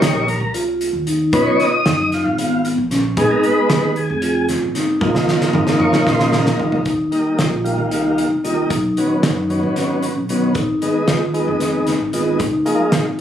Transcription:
Already playing: tonewheel organ G3 A#3 D#4 C#5
0.01 upright bass A#1, vibraphone G4, snare, closed hi-hat
0.28 tonewheel organ A#4, closed hi-hat
0.40 upright bass C2
0.54 vibraphone F4, closed hi-hat
0.81 closed hi-hat
0.93 upright bass D#2
1.07 vibraphone D#4, closed hi-hat
1.33 upright bass B1, tonewheel organ B3 C#4 D#4 B4, vibraphone F4, kick, closed hi-hat
1.47 tonewheel organ C#5
1.60 tonewheel organ D#5, snare, closed hi-hat
1.85 upright bass F#2, vibraphone D#4, snare, closed hi-hat
2.12 tonewheel organ F4, snare, closed hi-hat
2.25 upright bass G#1
2.38 vibraphone B3, closed hi-hat
2.65 closed hi-hat
2.78 upright bass A#1
2.91 vibraphone C#4, snare, closed hi-hat
3.17 upright bass G#1, tonewheel organ G#3 B3 D#4 G#4, vibraphone D#4, kick, closed hi-hat
3.31 tonewheel organ A#4
3.43 tonewheel organ B4, closed hi-hat
3.69 upright bass D#2, vibraphone G4, snare, closed hi-hat
3.96 tonewheel organ G#4, closed hi-hat
4.10 upright bass F1
4.22 vibraphone F4, closed hi-hat
4.49 snare, closed hi-hat
4.62 upright bass G#1
4.75 vibraphone D#4, snare, closed hi-hat
5.01 upright bass C#2, tonewheel organ F3 A#3 D#4, vibraphone F4, kick, high tom
5.15 snare
5.28 snare
5.41 snare
5.53 upright bass G#1, vibraphone D#4, mid tom
5.67 snare
5.80 tonewheel organ C#5, mid tom
5.93 upright bass A#1, snare
6.06 vibraphone C#4, tonewheel organ C5, kick, snare
6.19 snare
6.32 tonewheel organ A#4, snare
6.46 upright bass C#2, snare
6.59 vibraphone D#4, floor tom
6.72 floor tom
6.85 upright bass D#2, vibraphone D#4, kick, closed hi-hat
7.11 tonewheel organ D#3 G3 A#3 D#4, closed hi-hat
7.38 upright bass A#1, vibraphone F4, snare, closed hi-hat
7.64 tonewheel organ D#3 G3 A#3 F4, closed hi-hat
7.78 upright bass C2
7.91 vibraphone D#4, closed hi-hat
8.18 closed hi-hat
8.31 upright bass C2
8.44 tonewheel organ D#3 G3 A#3 D#4, vibraphone F4, closed hi-hat
8.70 upright bass B1, vibraphone D#4, kick, closed hi-hat
8.97 tonewheel organ D#3 F#3 B3 C#4, closed hi-hat
9.23 upright bass F#2, vibraphone D#4, snare, closed hi-hat
9.50 tonewheel organ D#3 F#3 B3 C#4, closed hi-hat
9.63 upright bass G#1
9.76 vibraphone C#4, snare, closed hi-hat
10.02 closed hi-hat
10.16 upright bass B1
10.29 tonewheel organ D#3 F#3 B3 C#4, vibraphone B3, closed hi-hat
10.55 upright bass G#1, vibraphone D#4, kick, closed hi-hat
10.82 tonewheel organ D#3 G#3 B3 D#4, closed hi-hat
11.08 upright bass D#2, vibraphone F4, snare, closed hi-hat
11.33 tonewheel organ D#3 G#3 B3 D#4, closed hi-hat
11.48 upright bass F1
11.60 vibraphone D#4, snare, closed hi-hat
11.87 snare, closed hi-hat
12.00 upright bass G#1
12.13 tonewheel organ D#3 G#3 B3 D#4, vibraphone F4, closed hi-hat
12.39 upright bass C#2, vibraphone D#4, kick, closed hi-hat
12.65 tonewheel organ F3 G#3 A#3 D#4, closed hi-hat
12.92 upright bass G#1, snare, closed hi-hat

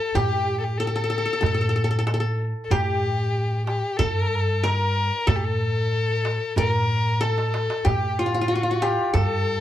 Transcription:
Already playing: qanun G4 A4, violin A4
0.15 upright bass A2, qanun G4, violin G4, darbuka dum
0.32 darbuka ka
0.60 violin A4
0.64 violin G4
0.78 violin A4, qanun A4, darbuka ka
0.87 qanun A4
0.95 qanun A4, darbuka ka
1.04 qanun A4
1.10 qanun A4
1.18 qanun A4
1.25 qanun A4, darbuka ka
1.33 qanun A4
1.41 upright bass A2, qanun A4, darbuka dum
1.46 qanun A4
1.54 qanun A4
1.61 qanun A4
1.69 qanun A4
1.76 qanun A4
1.84 qanun A4
1.91 qanun A4, darbuka ka
1.99 qanun A4
2.07 qanun A4, darbuka tek
2.14 qanun A4
2.20 qanun A4
2.39 darbuka ka
2.65 violin A4
2.71 upright bass A2, qanun G4, violin G4, darbuka dum
2.88 darbuka ka
3.36 darbuka ka
3.52 darbuka ka
3.67 violin G4, darbuka tek
3.84 darbuka ka
3.97 upright bass G2, violin A4, qanun A4, darbuka dum
4.48 darbuka ka
4.63 violin A#4, qanun A#4, darbuka tek
4.96 darbuka ka
5.27 upright bass A2, qanun A4, violin A4, darbuka dum
5.36 violin G4
5.45 violin A4
5.76 darbuka ka
5.93 darbuka ka
6.09 darbuka ka
6.25 darbuka tek
6.56 upright bass A2, qanun A#4, violin A#4, darbuka dum
7.21 qanun A4, violin A4, darbuka tek
7.38 darbuka ka
7.54 darbuka tek
7.70 darbuka ka
7.85 upright bass A2, qanun G4, violin G4, darbuka dum
8.02 darbuka ka
8.19 violin F4, qanun F4
8.26 qanun F4
8.34 qanun F4
8.41 qanun F4
8.48 qanun F4
8.55 qanun F4
8.63 qanun F4, darbuka ka
8.71 qanun F4
8.82 qanun G4, darbuka tek
8.99 darbuka ka
9.14 upright bass G2, qanun A4, violin A4, darbuka dum

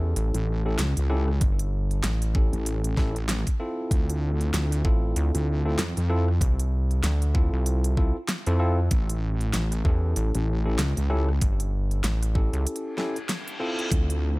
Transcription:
Already playing: analog synth bass E2, tine electric piano C#4 E4 G4 A4
0.16 analog synth bass A1, closed hi-hat
0.34 wobble bass A1, closed hi-hat
0.66 tine electric piano C#4 E4 G4 A4
0.78 wobble bass C#2, snare, closed hi-hat
0.97 wobble bass C#2, closed hi-hat
1.10 tine electric piano C#4 E4 G4 A4, cross-stick
1.28 cross-stick
1.41 analog synth bass G1, kick, closed hi-hat
1.59 closed hi-hat
1.91 closed hi-hat
2.04 analog synth bass A1, snare, closed hi-hat
2.22 closed hi-hat
2.35 tine electric piano C#4 E4 G4 A4, kick
2.53 wobble bass A1, closed hi-hat
2.66 closed hi-hat
2.84 closed hi-hat
2.97 wobble bass A1, tine electric piano C#4 E4 G4 A4, kick, snare
3.16 closed hi-hat
3.29 snare, closed hi-hat
3.47 kick, closed hi-hat
3.60 tine electric piano C4 E4 F4 A4
3.91 wobble bass D2, kick, closed hi-hat
4.10 closed hi-hat
4.41 closed hi-hat
4.53 wobble bass D2, snare, closed hi-hat
4.72 cross-stick, closed hi-hat
4.85 analog synth bass A1, tine electric piano C4 E4 F4 A4, kick
5.16 analog synth bass D2, closed hi-hat
5.35 wobble bass D2, closed hi-hat
5.65 tine electric piano C4 E4 F4 A4
5.78 wobble bass F2, snare, closed hi-hat
5.97 wobble bass F2, closed hi-hat
6.10 tine electric piano C4 E4 F4 A4, cross-stick
6.28 cross-stick
6.41 analog synth bass C2, kick, closed hi-hat
6.59 closed hi-hat
6.91 closed hi-hat
7.03 analog synth bass D2, snare, closed hi-hat
7.22 closed hi-hat
7.34 tine electric piano C4 E4 F4 A4, kick
7.53 analog synth bass C2
7.66 closed hi-hat
7.84 closed hi-hat
7.97 tine electric piano C4 E4 F4 A4, kick
8.29 snare, closed hi-hat
8.46 analog synth bass F2, tine electric piano C4 E4 F4 A4, closed hi-hat
8.60 tine electric piano C4 E4 F4 A4
8.91 wobble bass A1, kick, closed hi-hat
9.10 closed hi-hat
9.41 closed hi-hat
9.54 wobble bass A1, snare, closed hi-hat
9.72 cross-stick, closed hi-hat
9.85 analog synth bass E2, tine electric piano C#4 E4 G4 A4, kick
10.16 analog synth bass A1, closed hi-hat
10.35 wobble bass A1, closed hi-hat
10.66 tine electric piano C#4 E4 G4 A4
10.78 wobble bass C#2, snare, closed hi-hat
10.97 wobble bass C#2, closed hi-hat
11.10 tine electric piano C#4 E4 G4 A4, cross-stick
11.29 cross-stick
11.41 analog synth bass G1, kick, closed hi-hat
11.60 closed hi-hat
11.91 closed hi-hat
12.04 analog synth bass A1, snare, closed hi-hat
12.23 cross-stick, closed hi-hat
12.35 tine electric piano C#4 E4 G4 A4, kick
12.53 analog synth bass C#2, closed hi-hat
12.67 closed hi-hat, reverse cymbal
12.76 closed hi-hat
12.97 tine electric piano C#4 E4 G4 A4, snare
13.16 closed hi-hat
13.29 snare, closed hi-hat
13.48 closed hi-hat
13.60 tine electric piano C4 E4 F4 A4
13.79 closed hi-hat
13.92 wobble bass D2, kick, closed hi-hat
14.10 closed hi-hat

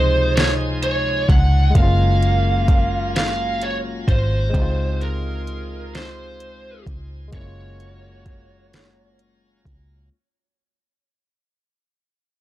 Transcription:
Already playing: fingered electric bass C#2, horn section C3 G#3 D#4, tine electric piano C3 F3 G#3 D#4, tonewheel organ F3 D#5 G#5 C6, lead electric guitar C5
0.36 lead electric guitar C#5, snare, closed hi-hat
0.83 lead electric guitar C#5, closed hi-hat
1.29 fingered electric bass C#2, lead electric guitar F#5, kick, closed hi-hat
1.70 tine electric piano G#3 A#3
1.75 fingered electric bass F#1, horn section C#3 A#3 F4, tonewheel organ F#3 F5 G#5 A#5, tine electric piano C#4, lead electric guitar F5, kick, closed hi-hat
1.82 tine electric piano F4
2.23 closed hi-hat
2.68 kick, closed hi-hat
3.16 lead electric guitar F5, snare, closed hi-hat
3.62 lead electric guitar C#5, closed hi-hat
4.08 fingered electric bass G#1, lead electric guitar C5, kick, closed hi-hat
4.49 tine electric piano G#3 C4
4.54 fingered electric bass C#2, horn section C3 G#3 F4, tine electric piano D#4, tonewheel organ F4 D#5 G#5 C6, kick, closed hi-hat
4.61 tine electric piano F4
5.01 lead electric guitar A#4, closed hi-hat
5.47 closed hi-hat
5.95 lead electric guitar C5, snare, closed hi-hat
6.40 closed hi-hat
6.87 fingered electric bass C#2, kick, closed hi-hat
7.28 tine electric piano G#3 A#3
7.33 fingered electric bass F#1, horn section C#3 A#3 F#4, tonewheel organ F#3 F5 G#5 A#5, tine electric piano C#4, lead electric guitar C#5, kick, closed hi-hat
7.39 tine electric piano E4
7.46 tine electric piano F4
7.80 closed hi-hat
8.26 kick, closed hi-hat
8.73 snare, closed hi-hat
9.19 closed hi-hat
9.65 fingered electric bass C#2, kick, closed hi-hat

